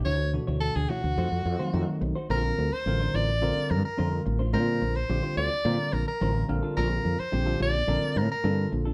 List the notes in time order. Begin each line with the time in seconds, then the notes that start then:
0.05 D2 A3 E4 F#4 C#5
0.19 muted clean electric guitar stroke
0.33 B2 E3 A3 D4 F#4, muted clean electric guitar stroke
0.47 D2 E4 F#4 C#5
0.60 A4, muted clean electric guitar stroke
0.75 D2 G#4
0.89 A3 E4 F#4 C#5
1.04 D2, muted clean electric guitar stroke
1.18 F2 A3 D#4 F#4 C5
1.32 F2, muted clean electric guitar stroke
1.45 F2, muted clean electric guitar stroke
1.59 D#3 F#3 A3 C4 D#4 F4 F#4 C5
1.73 F2 D#3 F#3 A3 C4 D#4
1.88 muted clean electric guitar stroke
2.01 B1, muted clean electric guitar stroke
2.15 D#4 F#4 C5
2.29 A#1 D3 G3 A3 C4 D4 F4 A#4 C5
2.59 D2, muted clean electric guitar stroke
2.72 C5, muted fretless electric bass stroke
2.86 A1 D3 G3 C4 F4 A#4, muted clean electric guitar stroke
3.00 D4 F4 C5
3.14 A1 A3 D4 F4 C5 D5
3.28 muted clean electric guitar stroke
3.42 A#1 D3 G3 A3 C4 D4 F4 A#4 C5
3.56 muted clean electric guitar stroke, muted fretless electric bass stroke
3.70 G2 A#4, muted clean electric guitar stroke
3.85 A#4
3.98 F2 D3 G3 A3 C4 D4 F4 A#4 C5
4.12 muted clean electric guitar stroke
4.25 A1, muted clean electric guitar stroke
4.39 D4 F4 C5
4.53 A#2 D3 G3 A3 C4 D4 F4 A#4 C5
4.68 muted clean electric guitar stroke
4.81 A#1, muted clean electric guitar stroke
4.96 C5
5.09 A#1 D3 G3 C4 F4 G4, muted clean electric guitar stroke
5.23 D4 F4 C5
5.37 D2 A3 D4 F4 C5 D5
5.52 muted clean electric guitar stroke
5.65 A#2 D3 G3 A3 C4 D4 F4 A#4 C5
5.79 muted clean electric guitar stroke
5.93 A#1 A#4, muted clean electric guitar stroke
6.08 A#4
6.21 A1 D3 G3 A3 C4 D4 F4 A#4 C5
6.35 muted clean electric guitar stroke
6.49 A#1 D3 G3 C4 F4 A#4, muted clean electric guitar stroke
6.63 D4 F4 A4
6.76 A#1 A#3 D4 F4 A4 A#4
6.90 muted clean electric guitar stroke
7.04 F2, muted clean electric guitar stroke
7.19 C5, muted fretless electric bass stroke
7.32 A#1 D3 G3 C4 F4 G4, muted clean electric guitar stroke
7.46 D4 F4 A4
7.59 A#1 A#3 D4 F4 A4 D5
7.87 A#1 D3 G3 A#3 C4 D4 F4 A4 A#4
8.02 muted clean electric guitar stroke, muted fretless electric bass stroke
8.15 A2 A#4, muted clean electric guitar stroke
8.31 A#4
8.44 G2 D3 G3 A#3 C4 D4 F4 A4
8.58 muted clean electric guitar stroke
8.72 A#1, muted clean electric guitar stroke
8.85 D4 F4 A4